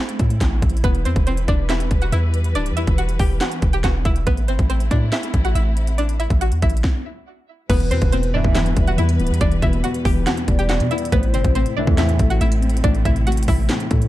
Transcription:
Already playing: A3 C4 E4 E5
0.09 closed hi-hat
0.19 A2, kick, closed hi-hat
0.30 closed hi-hat
0.41 A1, kick, snare, clap, closed hi-hat
0.62 A1, kick, closed hi-hat
0.70 closed hi-hat
0.77 closed hi-hat
0.84 E1 E3 G3 B3 B4, kick, closed hi-hat
0.95 closed hi-hat
1.05 E2 C4 C5, closed hi-hat
1.16 E1, kick, closed hi-hat
1.27 C4 C5, closed hi-hat
1.37 closed hi-hat
1.48 E1 D4 D5, kick, closed hi-hat
1.69 E4 E5, snare, clap, closed hi-hat
1.80 closed hi-hat
1.91 E1, kick, closed hi-hat
2.02 F#4 F#5, closed hi-hat
2.12 E2 E4 E5, closed hi-hat
2.34 closed hi-hat
2.44 closed hi-hat
2.55 D1 D4 D5, closed hi-hat
2.66 closed hi-hat
2.71 E2
2.77 E4 E5, closed hi-hat
2.87 E1, kick, closed hi-hat
2.98 F#4 F#5, closed hi-hat
3.09 closed hi-hat
3.19 E1 G4 G5, kick, open hi-hat
3.41 F#4 F#5, snare, clap, closed hi-hat
3.52 closed hi-hat
3.62 E1, kick, closed hi-hat
3.73 G4 G5, closed hi-hat
3.84 E1 F#4 F#5, kick, snare, clap, closed hi-hat
4.05 E1 E4 E5, kick, closed hi-hat
4.16 closed hi-hat
4.27 A1 A3 B3 C4 E4 B4, kick, closed hi-hat
4.37 closed hi-hat
4.48 G1 C4 C5, closed hi-hat
4.59 A1, kick, closed hi-hat
4.70 C4 C5, closed hi-hat
4.80 closed hi-hat
4.91 A2 D4 D5, kick, closed hi-hat
5.12 E4 E5, snare, clap, closed hi-hat
5.23 closed hi-hat
5.34 A1, kick, closed hi-hat
5.45 F#4 F#5, closed hi-hat
5.55 A1 E4 E5, closed hi-hat
5.77 closed hi-hat
5.87 closed hi-hat
5.98 D4 D5, closed hi-hat
6.09 closed hi-hat
6.20 E4 E5, closed hi-hat
6.30 A1, kick, closed hi-hat
6.41 F#4 F#5, closed hi-hat
6.52 E2, closed hi-hat
6.62 A1 E4 E5, kick, closed hi-hat, open hi-hat
6.70 closed hi-hat
6.77 closed hi-hat
6.84 kick, snare
7.70 E1 E2 E3 G3 B3 E4 B4, kick, closed hi-hat, crash
7.80 closed hi-hat
7.91 E2 B2 C4 C5, closed hi-hat
8.02 E1, kick, closed hi-hat
8.12 E2 C4 C5, closed hi-hat
8.23 closed hi-hat
8.33 B1 G2 E3 D4 D5 E5
8.44 E1, kick
8.55 E2 E4 E5, snare, clap, closed hi-hat
8.66 closed hi-hat
8.77 E1 G3, kick, closed hi-hat
8.87 F#4 F#5, closed hi-hat
8.98 E2 E4 E5, closed hi-hat
9.09 closed hi-hat
9.19 D1 B3, closed hi-hat
9.27 E2, closed hi-hat
9.34 closed hi-hat
9.41 E1 E2 D4 D5, kick, closed hi-hat
9.52 closed hi-hat
9.62 E1 B2 E4 E5, kick, closed hi-hat
9.73 closed hi-hat
9.84 E2 F#4 F#5, closed hi-hat
9.94 closed hi-hat
10.05 E1 E3 G4 G5, kick, open hi-hat
10.27 E2 F#4 F#5, snare, clap, closed hi-hat
10.37 closed hi-hat
10.48 E1 G3 D5, kick, closed hi-hat
10.59 G4 G5, closed hi-hat
10.69 E2 F#4 F#5, snare, clap, closed hi-hat
10.80 B2, closed hi-hat
10.91 B3 E4 E5, closed hi-hat
10.98 closed hi-hat
11.05 closed hi-hat
11.12 A1 A2 A3 B3 C4 B4 C5, kick, closed hi-hat
11.23 closed hi-hat
11.33 G1 C3 C4 C5, closed hi-hat
11.44 A1, kick, closed hi-hat
11.55 A2 C4 C5, closed hi-hat
11.66 closed hi-hat
11.77 C2 A2 E3 D4 D5 E5
11.87 E2, kick
11.98 A2 E4 E5, snare, clap, closed hi-hat
12.09 closed hi-hat
12.19 A1 A3, kick, closed hi-hat
12.30 F#4 F#5, closed hi-hat
12.41 A1 A2 E4 E5, closed hi-hat
12.52 closed hi-hat
12.62 C4, closed hi-hat
12.70 closed hi-hat
12.77 closed hi-hat
12.84 A1 A2 D4 D5, kick, closed hi-hat
12.95 closed hi-hat
13.05 A1 C3 E4 E5, kick, closed hi-hat
13.16 closed hi-hat
13.27 A2 F#4 F#5, closed hi-hat
13.32 closed hi-hat
13.37 closed hi-hat
13.43 closed hi-hat
13.48 A1 E3 E4 E5, kick, open hi-hat
13.69 A2, snare, clap, closed hi-hat
13.80 closed hi-hat
13.91 A2 A3, kick, closed hi-hat
14.02 closed hi-hat

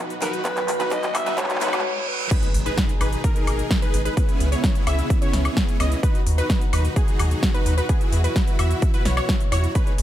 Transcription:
Already playing: B2 D#3 F#3 B3 D#4 F#4 B4, riser
0.10 closed hi-hat
0.20 B3 D#4 F#4 A#4 B4, clap, open hi-hat
0.33 closed hi-hat
0.44 B2 E3 B3 D#4 F#4 B4, kick, clap, closed hi-hat
0.57 clap, closed hi-hat
0.68 E2, clap, open hi-hat
0.80 D#4 F#4 B4, clap, closed hi-hat
0.90 B3 D#4 F#4 B4 D#5, kick, clap, closed hi-hat
1.03 clap, closed hi-hat
1.15 E2 E5, clap, open hi-hat, high woodblock
1.26 D#4 F#4 B4, clap, closed hi-hat
1.37 B3 D#4 F#4 B4 C#5, kick, clap, closed hi-hat, reverse cymbal
1.44 clap
1.50 clap, closed hi-hat
1.55 clap
1.60 B3 D#4 F#4 B4, clap, open hi-hat
1.67 clap
1.73 clap, closed hi-hat, high woodblock
1.79 clap
2.08 B4
2.31 B2 D#3 G#3 D#4 G#4 B4, kick, closed hi-hat, crash, impact
2.43 closed hi-hat
2.54 G#1, open hi-hat
2.66 D#4 G#4 B4, closed hi-hat
2.78 kick, snare, closed hi-hat
2.89 closed hi-hat
3.01 G#1 D#4 G#4 B4, open hi-hat, high woodblock
3.13 closed hi-hat
3.24 D#4 G#4 A#4, kick, closed hi-hat
3.36 closed hi-hat
3.47 G#1, open hi-hat, high woodblock
3.59 closed hi-hat
3.71 kick, snare, closed hi-hat
3.82 D#4 G#4 B4, closed hi-hat
3.94 G#1, open hi-hat
4.05 D#4 G#4 B4, closed hi-hat
4.17 C#3 E3 G#3 B3 C#4 E4 G#4 B4, kick, closed hi-hat
4.29 closed hi-hat
4.40 C#2, open hi-hat
4.52 B3 C#4 E4 G#4 C#5, open hi-hat
4.64 kick, snare, closed hi-hat
4.75 closed hi-hat
4.87 C#2 B3 C#4 E4 G#4 E5, open hi-hat, high woodblock
4.99 closed hi-hat
5.10 kick, closed hi-hat
5.22 B3 C#4 E4 G#4 C#5, closed hi-hat
5.33 C#2, snare, open hi-hat
5.45 closed hi-hat, high woodblock
5.57 kick, snare, closed hi-hat
5.69 closed hi-hat
5.80 C#2 B3 C#4 E4 G#4 D#5, open hi-hat, high woodblock
5.92 closed hi-hat
6.03 B2 D#3 F#3 D#4 F#4 B4, kick, closed hi-hat
6.15 closed hi-hat
6.26 D#2, open hi-hat
6.38 D#4 F#4 B4, closed hi-hat
6.50 kick, snare, closed hi-hat
6.61 closed hi-hat
6.73 D#2 D#4 F#4 B4, open hi-hat, high woodblock
6.85 closed hi-hat
6.96 D#4 F#4 G#4, kick, closed hi-hat
7.08 closed hi-hat
7.19 D#2, open hi-hat, high woodblock
7.31 closed hi-hat
7.43 kick, snare, closed hi-hat
7.54 D#4 F#4 B4, closed hi-hat
7.66 D#2, open hi-hat
7.77 D#4 F#4 B4, closed hi-hat
7.89 E3 E4 F#4 G#4, kick, closed hi-hat
8.01 closed hi-hat
8.12 E2, open hi-hat
8.24 E4 F#4 B4, open hi-hat
8.36 kick, snare, closed hi-hat
8.47 closed hi-hat
8.59 E2 E4 F#4 E5, open hi-hat, high woodblock
8.71 closed hi-hat
8.82 kick, closed hi-hat
8.94 E4 F#4 B4, closed hi-hat
9.05 B1 E4 F#4 C#5, snare, open hi-hat
9.17 E4 F#4 C#5, closed hi-hat, high woodblock
9.29 kick, snare, closed hi-hat
9.40 closed hi-hat
9.52 E2 E4 F#4 C#5, open hi-hat, high woodblock
9.64 closed hi-hat
9.75 D#3 G#3 D#4 G#4 B4, kick, closed hi-hat
9.87 closed hi-hat
9.98 G#1, open hi-hat, ride

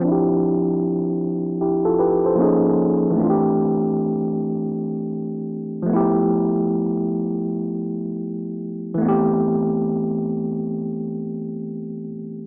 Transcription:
Already playing: F3
0.01 C4 D4
0.08 E4 G4
1.61 E4 G4
1.85 F4 A4
1.99 G4 B4
2.26 A4 C5
2.35 F3 A#3 C#4
2.41 D#4 G#4
3.10 E3 A3
3.16 C4 D4
3.23 F4
3.30 G4
5.82 F3 A3
5.89 B3 E4
5.96 G4
8.94 E3 A3
9.01 B3 C4
9.08 G4

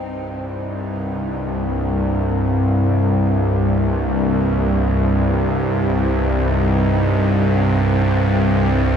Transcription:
Already playing: C2 G2 D#4
0.52 D#4
1.54 A#3
2.45 C#4
2.51 C4
3.52 A#3
5.50 C4
6.48 D#4
7.47 C4
8.44 C4

